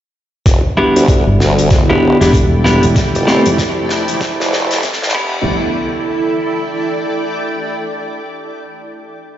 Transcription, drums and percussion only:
0.46 kick, snare, closed hi-hat
0.96 closed hi-hat
1.08 kick, closed hi-hat
1.40 snare
1.59 closed hi-hat
1.70 kick, snare, closed hi-hat
2.21 snare, closed hi-hat
2.33 kick, closed hi-hat
2.65 snare
2.83 closed hi-hat
2.96 kick, snare, closed hi-hat
3.15 closed hi-hat
3.27 snare
3.46 closed hi-hat
3.58 kick, snare, closed hi-hat
3.89 snare
4.08 closed hi-hat
4.21 kick, snare, closed hi-hat
4.40 snare
4.52 snare
4.71 snare, closed hi-hat
4.83 kick, snare, closed hi-hat
4.93 snare
5.02 snare
5.08 snare
5.15 kick, crash

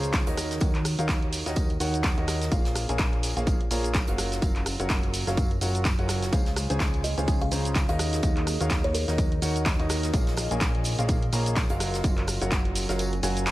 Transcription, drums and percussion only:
0.03 closed hi-hat, shaker
0.13 kick, snare, clap, closed hi-hat, tambourine, shaker
0.27 closed hi-hat
0.37 cross-stick, open hi-hat, tambourine, shaker
0.51 snare, closed hi-hat, shaker
0.60 kick, closed hi-hat, tambourine, shaker
0.75 clap, closed hi-hat
0.85 cross-stick, open hi-hat, tambourine, shaker
0.99 closed hi-hat, shaker
1.09 kick, snare, clap, closed hi-hat, tambourine, shaker
1.22 closed hi-hat
1.33 open hi-hat, tambourine, shaker
1.46 snare, closed hi-hat, shaker
1.56 kick, closed hi-hat, tambourine, shaker
1.70 closed hi-hat
1.80 open hi-hat, tambourine, shaker
1.94 closed hi-hat, shaker
2.03 kick, snare, clap, closed hi-hat, tambourine, shaker
2.18 closed hi-hat
2.27 cross-stick, snare, open hi-hat, tambourine, shaker
2.41 snare, closed hi-hat, shaker
2.51 kick, closed hi-hat, tambourine, shaker
2.65 snare, closed hi-hat
2.75 cross-stick, open hi-hat, tambourine, shaker
2.89 closed hi-hat, shaker
2.99 kick, snare, clap, closed hi-hat, tambourine, shaker
3.13 closed hi-hat
3.23 open hi-hat, tambourine, shaker
3.37 closed hi-hat, shaker
3.47 kick, closed hi-hat, tambourine, shaker
3.61 closed hi-hat
3.71 open hi-hat, tambourine, shaker
3.84 closed hi-hat, shaker
3.94 kick, snare, clap, closed hi-hat, tambourine, shaker
4.07 closed hi-hat
4.18 cross-stick, open hi-hat, tambourine, shaker
4.32 snare, closed hi-hat, shaker
4.42 kick, closed hi-hat, tambourine, shaker
4.56 clap, closed hi-hat
4.66 cross-stick, open hi-hat, tambourine, shaker
4.80 closed hi-hat, shaker
4.89 kick, snare, clap, closed hi-hat, tambourine, shaker
5.03 closed hi-hat
5.13 open hi-hat, tambourine, shaker
5.27 snare, closed hi-hat, shaker
5.37 kick, closed hi-hat, tambourine, shaker
5.51 closed hi-hat
5.61 open hi-hat, tambourine, shaker
5.75 closed hi-hat, shaker
5.85 kick, snare, clap, closed hi-hat, tambourine, shaker
5.99 closed hi-hat
6.08 cross-stick, snare, open hi-hat, tambourine, shaker
6.22 snare, closed hi-hat, shaker
6.33 kick, closed hi-hat, tambourine, shaker
6.46 snare, closed hi-hat
6.56 cross-stick, open hi-hat, tambourine, shaker
6.70 closed hi-hat, shaker
6.80 kick, snare, clap, closed hi-hat, tambourine, shaker
6.94 closed hi-hat
7.04 open hi-hat, tambourine, shaker
7.18 closed hi-hat, shaker
7.28 kick, closed hi-hat, tambourine, shaker
7.41 closed hi-hat
7.51 open hi-hat, tambourine, shaker
7.65 closed hi-hat, shaker
7.75 kick, snare, clap, closed hi-hat, tambourine, shaker
7.89 closed hi-hat
7.99 cross-stick, open hi-hat, tambourine, shaker
8.13 snare, closed hi-hat, shaker
8.23 kick, closed hi-hat, tambourine, shaker
8.37 clap, closed hi-hat
8.47 cross-stick, open hi-hat, tambourine, shaker
8.61 closed hi-hat, shaker
8.70 kick, snare, clap, closed hi-hat, tambourine, shaker
8.84 closed hi-hat
8.94 open hi-hat, tambourine, shaker
9.08 snare, closed hi-hat, shaker
9.18 kick, closed hi-hat, tambourine, shaker
9.32 closed hi-hat
9.42 open hi-hat, tambourine, shaker
9.56 closed hi-hat, shaker
9.66 kick, snare, clap, closed hi-hat, tambourine, shaker
9.80 closed hi-hat
9.89 cross-stick, snare, open hi-hat, tambourine, shaker
10.03 snare, closed hi-hat, shaker
10.13 kick, closed hi-hat, tambourine, shaker
10.27 snare, closed hi-hat
10.37 cross-stick, open hi-hat, tambourine, shaker
10.51 closed hi-hat, shaker
10.61 kick, snare, clap, closed hi-hat, tambourine, shaker
10.75 closed hi-hat
10.84 open hi-hat, tambourine, shaker
10.99 closed hi-hat, shaker
11.09 kick, closed hi-hat, tambourine, shaker
11.22 closed hi-hat
11.33 open hi-hat, tambourine, shaker
11.46 closed hi-hat, shaker
11.56 kick, snare, clap, closed hi-hat, tambourine, shaker
11.70 closed hi-hat
11.80 cross-stick, open hi-hat, tambourine, shaker
11.94 snare, closed hi-hat, shaker
12.04 kick, closed hi-hat, tambourine, shaker
12.18 clap, closed hi-hat
12.27 cross-stick, open hi-hat, tambourine, shaker
12.41 closed hi-hat, shaker
12.51 kick, snare, clap, closed hi-hat, tambourine, shaker
12.65 closed hi-hat
12.75 open hi-hat, tambourine, shaker
12.89 snare, closed hi-hat, shaker
12.99 closed hi-hat, tambourine, shaker
13.13 closed hi-hat
13.23 open hi-hat, tambourine, shaker
13.37 closed hi-hat, shaker
13.47 snare, clap, closed hi-hat, tambourine, shaker

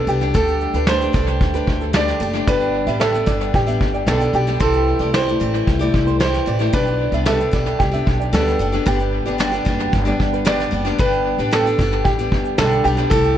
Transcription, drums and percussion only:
0.09 shaker
0.21 shaker
0.35 kick, shaker
0.48 shaker
0.61 shaker
0.74 shaker
0.87 snare, shaker
1.01 shaker
1.14 kick, shaker
1.28 shaker
1.41 kick, shaker
1.54 shaker
1.67 kick
1.81 shaker
1.94 snare, shaker
2.08 snare, shaker
2.22 shaker
2.34 shaker
2.48 kick, shaker
2.61 shaker
2.88 shaker
3.01 snare, shaker
3.15 shaker
3.27 kick, shaker
3.41 shaker
3.54 kick, shaker
3.68 shaker
3.81 kick
3.94 shaker
4.08 snare, shaker
4.21 shaker
4.47 shaker
4.60 kick, shaker
4.73 shaker
5.01 shaker
5.14 snare, shaker
5.28 shaker
5.42 shaker
5.55 shaker
5.67 kick, shaker
5.82 shaker
5.94 kick
6.07 shaker
6.20 snare, shaker
6.34 snare, shaker
6.60 shaker
6.73 kick, shaker
6.87 shaker
7.13 shaker
7.26 snare, shaker
7.40 shaker
7.53 kick, shaker
7.67 shaker
7.80 kick, shaker
7.94 shaker
8.07 kick
8.21 shaker
8.34 snare, shaker
8.48 snare, shaker
8.61 shaker
8.73 shaker
8.86 kick, shaker
9.00 shaker
9.27 shaker
9.40 snare, shaker
9.54 shaker
9.66 kick, shaker
9.80 shaker
9.93 kick, shaker
10.07 shaker
10.20 kick, shaker
10.33 shaker
10.46 snare, shaker
10.60 snare, shaker
10.86 shaker
10.99 kick, shaker
11.13 shaker
11.40 shaker
11.53 snare, shaker
11.67 shaker
11.79 kick, shaker
11.92 shaker
12.05 kick, shaker
12.19 shaker
12.32 kick
12.45 shaker
12.58 snare, shaker
12.72 shaker
12.98 shaker
13.11 kick, shaker
13.24 shaker

